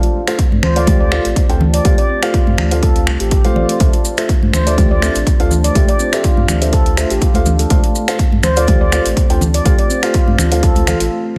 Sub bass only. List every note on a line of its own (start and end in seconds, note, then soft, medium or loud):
0.52 0.60 G2 medium
0.63 1.19 D2 medium
1.25 1.33 A1 medium
1.50 1.80 D2 medium
1.85 1.95 D2 loud
2.47 2.55 G2 medium
2.59 3.07 D2 medium
3.07 3.17 C2 medium
3.20 3.51 A1 medium
3.56 3.65 A1 medium
3.80 3.90 D2 loud
4.42 4.50 G2 medium
4.53 5.10 D2 medium
5.15 5.24 A1 medium
5.40 5.71 D2 loud
5.75 5.85 D2 loud
6.37 6.46 G2 medium
6.49 7.05 D2 medium
7.11 7.19 A1 medium
7.35 7.66 D2 medium
7.70 7.80 D2 loud
8.32 8.41 G2 medium
8.44 9.00 D2 medium
9.06 9.14 A1 medium
9.29 9.60 D2 loud
9.65 9.75 D2 loud
10.27 10.36 G2 medium
10.38 10.95 D2 medium
11.00 11.09 A1 medium